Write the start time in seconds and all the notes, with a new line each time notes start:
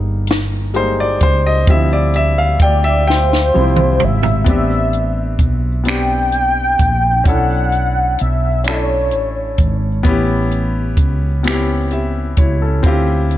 Already playing: G1 G3 G#3 A#3 D#4
0.27 snare, closed hi-hat
0.74 G3 G#3 A#3 D#4 C5, closed hi-hat
1.00 D5
1.21 C#2 C5, kick, closed hi-hat
1.46 D#5
1.67 D2 F3 G3 C4 E4 E5, kick, closed hi-hat
1.93 D5
2.14 E5, closed hi-hat
2.38 F5
2.60 D2 D5 G5, kick, closed hi-hat
2.84 E5
3.07 C5 G5, snare
3.33 snare
3.54 C2 F3 G3 C4 E4
3.76 mid tom
4.00 G#1, mid tom
4.05 E5
4.23 floor tom
4.44 A1 B3 C4 D4, kick, closed hi-hat
4.49 G4 E5
4.93 closed hi-hat
5.39 B1, kick, closed hi-hat
5.84 B3 C4 D4, closed hi-hat
5.88 G4 G5, finger snap
6.32 closed hi-hat
6.79 A#1, kick, closed hi-hat
7.24 B1 C#4 D4 E4 F#5, kick, closed hi-hat
7.29 A4
7.72 closed hi-hat
8.19 B1 E5, closed hi-hat
8.64 C#4 D4 E4, finger snap, closed hi-hat
8.68 A4 C#5
9.11 A1, closed hi-hat
9.58 G#1, kick, closed hi-hat
10.03 A1 B3 C#4 E4, kick, closed hi-hat
10.08 G4
10.51 closed hi-hat
10.97 C#2, kick, closed hi-hat
11.43 B3 C4 E4, closed hi-hat
11.48 C#4 G4, finger snap
11.91 G4 E5, closed hi-hat
12.37 C#2 E4 C#5, kick, closed hi-hat
12.62 C#4 A4
12.83 D2 C4 E4 F4, kick, closed hi-hat
12.88 G4
13.31 closed hi-hat